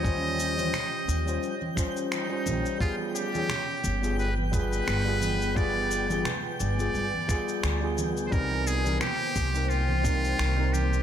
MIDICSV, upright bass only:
0, 0, Header, 1, 2, 480
1, 0, Start_track
1, 0, Tempo, 689655
1, 33, Time_signature, 4, 2, 24, 8
1, 7675, End_track
2, 0, Start_track
2, 0, Title_t, "Upright bass"
2, 0, Program_c, 0, 32
2, 0, Note_on_c, 0, 39, 92
2, 479, Note_off_c, 0, 39, 0
2, 754, Note_on_c, 0, 39, 88
2, 950, Note_off_c, 0, 39, 0
2, 1715, Note_on_c, 0, 34, 87
2, 1821, Note_off_c, 0, 34, 0
2, 2673, Note_on_c, 0, 31, 93
2, 3359, Note_off_c, 0, 31, 0
2, 3395, Note_on_c, 0, 31, 98
2, 4320, Note_off_c, 0, 31, 0
2, 4595, Note_on_c, 0, 31, 92
2, 4791, Note_off_c, 0, 31, 0
2, 4835, Note_on_c, 0, 31, 81
2, 4941, Note_off_c, 0, 31, 0
2, 5313, Note_on_c, 0, 38, 73
2, 5759, Note_off_c, 0, 38, 0
2, 5793, Note_on_c, 0, 36, 80
2, 6239, Note_off_c, 0, 36, 0
2, 6513, Note_on_c, 0, 36, 95
2, 7199, Note_off_c, 0, 36, 0
2, 7233, Note_on_c, 0, 36, 92
2, 7675, Note_off_c, 0, 36, 0
2, 7675, End_track
0, 0, End_of_file